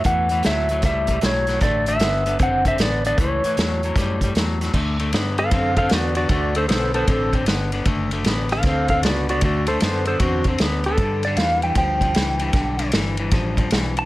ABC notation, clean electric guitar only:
X:1
M:4/4
L:1/8
Q:"Swing" 1/4=154
K:D
V:1 name="Clean electric guitar" clef=bass
[A,,E,] [A,,E,] [A,,F,] [A,,F,] [A,,G,] [A,,G,] [A,,F,] [A,,F,] | [D,A,] [D,A,] [D,B,] [D,B,] [D,=C] [D,C] [D,B,] [D,B,] | [A,,E,] [A,,E,] [A,,F,] [A,,F,] [A,,G,] [A,,G,] [A,,F,] [A,,F,] | [D,A,] [D,A,] [D,B,] [D,B,] [D,=C] [D,C] [D,B,] [D,B,] |
[D,A,] [D,A,] [D,B,] [D,B,] [D,=C] [D,C] [D,B,] [D,B,] | [D,A,] [D,A,] [D,B,] [D,B,] [D,=C] [D,C] [D,B,] [D,B,] | [D,A,] [D,A,] [D,B,] [D,B,] [D,=C] [D,C] [D,B,] [D,B,] | [G,,D,] [G,,D,] [G,,E,] [G,,E,] [G,,=F,] [G,,F,] [G,,E,] [G,,E,] |
[G,,D,] [G,,D,] [G,,E,] [G,,E,] [G,,=F,] [G,,F,] [G,,E,] [G,,E,] |]